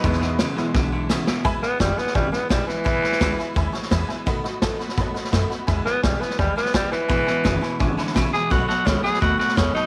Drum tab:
HH |----p-------p---|----p-------p---|----p-------p---|----p-------p---|
SD |ooo-o-o-o---o-o-|o-o-o-ooo-o-o-o-|o-ooo-o-o-ooo-o-|o-o-o-ooo-ooo-o-|
BD |o-------o-------|o---o---o---o---|o---o---o---o---|o---o---o---o---|

HH |----p-------p---|----p-------p---|----p-------p---|
SD |o-o-o-ooo-ooo-o-|o-o-o-o-o-ooo-o-|o-o-o-ooo-ooo-o-|
BD |o---o---o---o---|o---o---o---o---|o---o---o---o---|